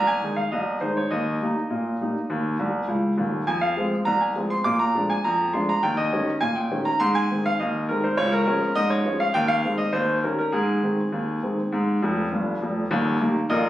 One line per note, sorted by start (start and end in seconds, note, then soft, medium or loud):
0.00 0.18 C2 medium
0.07 0.35 G#5 medium
0.22 0.39 D#3 soft
0.22 0.39 G#3 soft
0.22 0.39 D#4 soft
0.36 0.52 F5 medium
0.52 0.77 C2 medium
0.52 0.75 D#5 medium
0.81 0.98 D#3 soft
0.81 0.98 G#3 soft
0.81 0.98 D#4 soft
0.81 0.96 C5 medium
0.97 1.11 C#5 medium
1.11 1.37 D#2 medium
1.11 2.77 D#5 medium
1.42 1.58 G3 soft
1.42 1.58 A#3 soft
1.42 1.58 D#4 soft
1.70 1.95 A#2 medium
2.01 2.17 G3 soft
2.01 2.17 A#3 soft
2.01 2.17 D#4 soft
2.30 2.55 D#2 medium
2.59 2.81 C2 medium
2.88 3.10 C#2 soft
3.17 3.40 D#1 medium
3.17 3.40 D#2 medium
3.47 3.73 F2 medium
3.47 3.62 G#5 medium
3.61 3.97 F5 medium
3.77 3.93 F3 soft
3.77 3.94 G#3 soft
3.77 3.94 C4 soft
4.05 4.32 C2 medium
4.05 4.21 A#5 medium
4.21 4.45 G#5 medium
4.36 4.52 F3 soft
4.36 4.53 G#3 soft
4.36 4.53 C4 soft
4.50 4.65 C6 medium
4.64 4.90 A#2 medium
4.64 4.80 D6 medium
4.79 5.03 A#5 medium
4.95 5.11 F3 soft
4.95 5.12 G#3 soft
4.95 5.12 D4 soft
5.10 5.24 G#5 medium
5.24 5.50 F2 medium
5.24 5.52 A#5 medium
5.53 5.70 F3 soft
5.53 5.70 G#3 soft
5.53 5.70 D4 soft
5.53 5.68 C6 medium
5.69 5.83 A#5 medium
5.83 6.08 D#2 medium
5.83 5.98 G5 medium
5.97 6.32 D#5 medium
6.13 6.29 D#3 soft
6.13 6.29 G3 soft
6.13 6.29 C#4 medium
6.41 6.66 A#2 medium
6.41 6.56 G#5 medium
6.55 6.84 G5 medium
6.71 6.87 D#3 soft
6.71 6.87 G3 soft
6.71 6.87 C#4 soft
6.85 7.00 A#5 medium
7.00 7.25 G#2 medium
7.00 7.15 C6 medium
7.15 7.43 G#5 medium
7.31 7.46 D#3 soft
7.31 7.46 G#3 soft
7.31 7.47 C4 medium
7.46 7.59 F5 medium
7.59 7.84 D#2 medium
7.59 7.82 D#5 medium
7.89 8.05 D#3 soft
7.89 8.05 G#3 soft
7.89 8.06 C4 soft
7.89 8.03 A#4 medium
8.04 8.18 C5 medium
8.17 8.42 C#2 medium
8.17 8.32 C#5 loud
8.32 8.73 A#4 medium
8.46 8.62 F3 soft
8.46 8.63 G#3 medium
8.46 8.63 C#4 medium
8.75 9.01 G#2 medium
8.75 8.90 D#5 loud
8.90 9.18 C#5 medium
9.05 9.21 F3 soft
9.05 9.21 G#3 soft
9.05 9.22 C#4 soft
9.20 9.34 F5 medium
9.34 9.60 D#2 medium
9.34 9.49 G5 loud
9.48 9.76 F5 medium
9.64 9.80 D#3 soft
9.64 9.80 G#3 medium
9.64 9.80 C4 medium
9.78 9.93 D#5 medium
9.93 10.18 D#2 medium
9.93 10.16 C5 medium
10.23 10.39 D#3 soft
10.23 10.40 G3 soft
10.23 10.40 C#4 soft
10.23 10.37 A#4 medium
10.39 10.53 A#4 medium
10.52 10.78 G#2 medium
10.52 11.95 G#4 medium
10.83 10.99 D#3 soft
10.83 10.99 G#3 soft
10.83 10.99 C4 soft
11.12 11.37 D#2 medium
11.42 11.58 D#3 soft
11.42 11.59 G#3 soft
11.42 11.59 C4 soft
11.72 11.97 G#2 medium
12.02 12.25 F1 medium
12.02 12.24 F2 medium
12.32 12.54 G1 medium
12.32 12.54 G2 medium
12.62 12.84 F1 medium
12.62 12.84 F2 soft
12.91 13.16 D#1 medium
12.91 13.16 D#2 medium
13.21 13.37 D#3 medium
13.21 13.37 G3 medium
13.21 13.37 A#3 medium
13.50 13.69 A#1 medium
13.50 13.69 A#2 medium
13.50 13.69 A#4 medium
13.50 13.69 D#5 medium